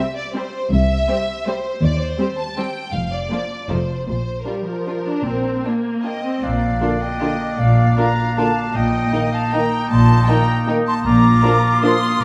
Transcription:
Already playing: violin section E5
0.16 violin section D5
0.34 viola section G3 C4, violin section G4 C5
0.71 double bass section C2, cello section C2, violin section E5
1.08 viola section G3 C4, violin section G4 C5
1.47 viola section G3 C4, violin section G4 C5
1.82 double bass section D#2, cello section D#2, violin section D5
2.00 violin section C5
2.19 viola section G3 C4, violin section G4 C5
2.39 violin section A5
2.58 viola section G3 C4, violin section G4 C5 G5
2.93 double bass section F1, cello section F2, violin section F5
3.12 violin section D5
3.30 viola section F3 A#3, violin section D4 F4
3.69 double bass section F1, cello section F2, viola section F3 A3, violin section D#4 F4 C5
4.07 double bass section A#1, cello section A#2, violin section C5
4.46 viola section G3, violin section D4 F4 A#4
4.66 viola section F3
4.87 violin section D4 F4
5.06 viola section D4
5.25 double bass section A#1, cello section A#2, viola section C4
5.64 viola section A#3, violin section D4 F4
6.04 violin section D4 F4 D#5, flute G5
6.24 viola section C4
6.42 double bass section A#1, cello section A#2, clarinet A#3, oboe D4, violin section D5, flute F5
6.81 french horn section D3 A#3, viola section D4 F4, violin section A#4
7.02 violin section D#5, flute G5
7.20 french horn section D3 A#3, viola section D4 F4, violin section A#4
7.59 double bass section A#1, cello section A#2, violin section D5, flute F5
7.97 french horn section D3 A#3, viola section D4 F4, violin section A#4 F5, flute A#5
8.37 french horn section D3 A#3, viola section D4 F4, violin section A#4 F5, flute A5
8.75 double bass section A#1, cello section A#2, clarinet A#3, oboe D#4, violin section D#5, flute G5
9.13 french horn section D#3 A#3, viola section D#4, violin section A#4
9.34 violin section F5, flute A5
9.53 french horn section D#3 A#3, viola section D#4, violin section A#4 G5, flute A#5
9.91 double bass section A#1, cello section A#2, violin section A5, flute C6
10.28 french horn section D#3 A#3, viola section D#4, violin section A#4 G5, flute A#5
10.68 french horn section D#3 A#3, viola section D#4, violin section A#4
10.88 violin section A5, flute C6
11.05 double bass section A#1, cello section A#2, clarinet A#3, oboe F4, violin section A#5, flute D6
11.43 french horn section F3 A#3, viola section D4 F4, violin section A#4
11.82 french horn section F3 A#3, viola section D4 F4, violin section A#4 C6, flute D#6
12.21 double bass section A#1, cello section A#2, flute D6

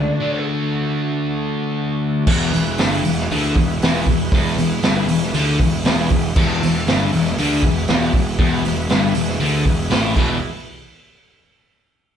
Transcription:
Already playing: distorted electric guitar D3 A3 D4, lead electric guitar D4, tonewheel organ D4 F#4 A4
0.20 distorted electric guitar D3 A3 D4
2.27 picked electric bass E1, distorted electric guitar E2, tonewheel organ E4 G#4 B4, kick, crash
2.53 picked electric bass E1, distorted electric guitar E2, snare, open hi-hat
2.78 picked electric bass G1, distorted electric guitar G2, snare, open hi-hat
3.04 picked electric bass E1, distorted electric guitar E2, open hi-hat
3.18 snare
3.31 picked electric bass D2, distorted electric guitar D3, open hi-hat
3.55 picked electric bass E1, distorted electric guitar E2, kick, open hi-hat
3.82 picked electric bass E1, distorted electric guitar E2, snare, open hi-hat
4.07 picked electric bass E1, distorted electric guitar E2, kick, open hi-hat
4.32 picked electric bass E1, distorted electric guitar E2, kick, open hi-hat
4.57 picked electric bass E1, distorted electric guitar E2, open hi-hat
4.82 picked electric bass G1, distorted electric guitar G2, snare, open hi-hat
5.06 picked electric bass E1, distorted electric guitar E2, open hi-hat
5.23 snare
5.34 picked electric bass D2, distorted electric guitar D3, open hi-hat
5.59 picked electric bass E1, distorted electric guitar E2, kick, open hi-hat
5.84 picked electric bass E1, distorted electric guitar E2, snare, open hi-hat
6.10 picked electric bass E1, distorted electric guitar E2, kick, open hi-hat
6.36 picked electric bass E1, distorted electric guitar E2, tonewheel organ G#4 B4 E5, kick, crash
6.61 picked electric bass E1, distorted electric guitar E2, snare, open hi-hat
6.87 picked electric bass G1, distorted electric guitar G2, snare, open hi-hat
7.13 picked electric bass E1, distorted electric guitar E2, open hi-hat
7.26 snare
7.38 picked electric bass D2, distorted electric guitar D3, open hi-hat
7.63 picked electric bass E1, distorted electric guitar E2, kick, open hi-hat
7.88 picked electric bass E1, distorted electric guitar E2, snare, open hi-hat
8.13 picked electric bass E1, distorted electric guitar E2, kick, open hi-hat
8.38 picked electric bass E1, distorted electric guitar E2, kick, open hi-hat
8.65 picked electric bass E1, distorted electric guitar E2, snare, open hi-hat
8.89 picked electric bass G1, distorted electric guitar G2, snare, open hi-hat
9.14 picked electric bass E1, distorted electric guitar E2, open hi-hat
9.29 snare
9.40 picked electric bass D2, distorted electric guitar D3, open hi-hat
9.64 picked electric bass E1, distorted electric guitar E2, kick, open hi-hat
9.90 picked electric bass A1, distorted electric guitar A2, snare, open hi-hat
10.16 picked electric bass E1, distorted electric guitar E2 B2 E3, tonewheel organ E4 G#4 B4, kick, crash

